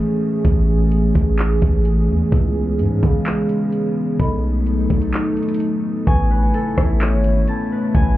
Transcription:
Already playing: analog synth pad E3 A3 B3 C#4 G#4, marimba G#4 C#5 B5
0.45 808-style bass A1, kick, closed hi-hat
0.92 closed hi-hat
1.15 808-style bass A1, kick, closed hi-hat
1.38 clap, closed hi-hat
1.62 808-style bass A1, kick, closed hi-hat
1.85 closed hi-hat
2.09 808-style bass E2
2.32 808-style bass C#2, analog synth pad G#3 B3 C#4, marimba E4, kick, closed hi-hat
2.79 808-style bass G#2, closed hi-hat
3.03 808-style bass C#3, kick, closed hi-hat
3.26 clap, closed hi-hat
3.49 closed hi-hat
3.73 closed hi-hat
4.20 808-style bass B1, analog synth pad F#3 A3 D#4 A4, marimba A4 D#5 B5, kick, closed hi-hat
4.67 closed hi-hat
4.90 808-style bass B1, kick, closed hi-hat
5.02 closed hi-hat
5.13 clap, closed hi-hat
5.37 closed hi-hat
5.43 closed hi-hat
5.49 closed hi-hat
5.54 closed hi-hat
5.60 closed hi-hat
6.07 808-style bass A1, analog synth pad C#3 A3 B3 E4, marimba B4 G#5 C#6, harp G#5, kick, closed hi-hat
6.31 harp B4
6.54 harp A4, closed hi-hat
6.77 808-style bass A1, harp E4, kick, cross-stick, closed hi-hat
7.01 harp C#4, clap, closed hi-hat
7.12 808-style bass G#1
7.24 closed hi-hat
7.48 harp A5, closed hi-hat
7.72 harp B4
7.95 808-style bass A1, harp G#5, kick, closed hi-hat

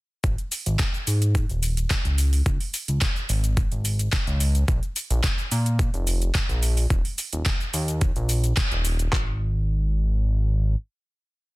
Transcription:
0.24 analog synth bass G#1, kick, closed hi-hat, shaker
0.38 closed hi-hat, shaker
0.52 open hi-hat, shaker
0.66 analog synth bass G#1, closed hi-hat, shaker
0.79 kick, clap, closed hi-hat, shaker
0.94 shaker
1.07 analog synth bass G#2, open hi-hat, shaker
1.22 closed hi-hat, shaker
1.35 kick, closed hi-hat, shaker
1.50 analog synth bass D#1, closed hi-hat, shaker
1.63 open hi-hat, shaker
1.77 closed hi-hat, shaker
1.90 kick, clap, closed hi-hat, shaker
2.05 analog synth bass C#2, closed hi-hat, shaker
2.18 open hi-hat, shaker
2.33 open hi-hat, shaker
2.46 analog synth bass C#2, kick, closed hi-hat, shaker
2.60 open hi-hat, shaker
2.74 open hi-hat, shaker
2.88 analog synth bass C#2, closed hi-hat, shaker
3.01 kick, clap, closed hi-hat, shaker
3.16 shaker
3.29 analog synth bass G#1, open hi-hat, shaker
3.44 closed hi-hat, shaker
3.57 kick, closed hi-hat, shaker
3.72 analog synth bass G#1, closed hi-hat, shaker
3.85 open hi-hat, shaker
3.99 closed hi-hat, shaker
4.12 kick, clap, closed hi-hat, shaker
4.27 analog synth bass C#2, closed hi-hat, shaker
4.40 open hi-hat, shaker
4.55 closed hi-hat, shaker
4.68 analog synth bass A#1, kick, closed hi-hat, shaker
4.83 closed hi-hat, shaker
4.96 open hi-hat, shaker
5.10 analog synth bass A#1, closed hi-hat, shaker
5.24 kick, clap, closed hi-hat, shaker
5.38 shaker
5.52 analog synth bass A#2, open hi-hat, shaker
5.66 closed hi-hat, shaker
5.79 kick, closed hi-hat, shaker
5.94 analog synth bass F1, closed hi-hat, shaker
6.07 open hi-hat, shaker
6.22 closed hi-hat, shaker
6.35 kick, clap, closed hi-hat, shaker
6.49 analog synth bass A#1, closed hi-hat, shaker
6.63 open hi-hat, shaker
6.77 open hi-hat, shaker
6.90 analog synth bass D#1, kick, closed hi-hat, shaker
7.05 open hi-hat, shaker
7.18 open hi-hat, shaker
7.33 analog synth bass D#1, closed hi-hat, shaker
7.46 kick, clap, closed hi-hat, shaker
7.61 shaker
7.74 analog synth bass D#2, open hi-hat, shaker
7.88 closed hi-hat, shaker
8.01 kick, closed hi-hat, shaker
8.16 analog synth bass A#1, closed hi-hat, shaker
8.29 open hi-hat, shaker
8.44 closed hi-hat, shaker
8.57 kick, clap, closed hi-hat, shaker
8.72 analog synth bass D#1, closed hi-hat, shaker
8.85 open hi-hat, shaker
8.99 closed hi-hat, shaker
9.13 analog synth bass G#1, kick, clap

